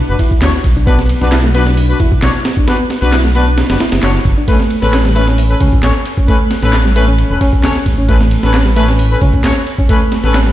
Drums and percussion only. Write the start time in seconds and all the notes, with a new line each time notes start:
0.19 kick, ride, shaker
0.31 kick, shaker
0.42 snare, clap, ride, shaker
0.54 snare
0.64 kick, ride, shaker
0.76 shaker
0.87 kick, ride, shaker
0.99 snare
1.09 ride, shaker
1.21 snare, shaker
1.32 snare, clap, ride, shaker
1.44 snare
1.55 ride, shaker
1.67 snare, shaker
1.77 open hi-hat, shaker
2.00 kick, ride, shaker
2.12 kick, shaker
2.22 snare, clap, ride, shaker
2.45 snare, ride, shaker
2.57 kick, shaker
2.67 snare, ride, shaker
2.90 snare, ride, shaker
3.02 snare, shaker
3.12 snare, clap, ride, shaker
3.24 snare
3.35 ride, shaker
3.47 ride, shaker
3.58 snare, ride, shaker
3.70 snare, ride
3.80 snare, ride, shaker
3.92 snare, ride, shaker
4.03 snare, clap, ride, shaker
4.15 snare
4.25 kick, ride, shaker
4.37 shaker
4.48 kick, ride, shaker
4.60 snare
4.70 ride, shaker
4.82 snare, shaker
4.93 snare, clap, ride, shaker
5.05 snare
5.15 ride, shaker
5.27 snare, shaker
5.38 open hi-hat, shaker
5.60 kick, ride, shaker
5.72 kick, shaker
5.83 snare, clap, ride, shaker
6.05 ride, shaker
6.17 kick, shaker
6.28 kick, ride, shaker
6.51 snare, ride, shaker
6.63 snare, shaker
6.73 snare, clap, ride, shaker
6.85 snare
6.96 ride, shaker
7.08 ride, shaker
7.18 ride, shaker
7.41 kick, ride, shaker
7.53 kick, shaker
7.63 snare, clap, ride, shaker
7.75 snare
7.86 kick, ride, shaker
7.98 shaker
8.09 kick, ride, shaker
8.21 snare
8.31 ride, shaker
8.43 snare, shaker
8.54 snare, clap, ride, shaker
8.66 snare
8.76 ride, shaker
8.88 snare, shaker
8.99 open hi-hat, shaker
9.21 kick, ride, shaker
9.33 kick, shaker
9.44 snare, clap, ride, shaker
9.67 ride, shaker
9.78 kick, shaker
9.89 kick, ride, shaker
10.12 snare, ride, shaker
10.24 snare, shaker
10.34 snare, clap, ride, shaker
10.46 snare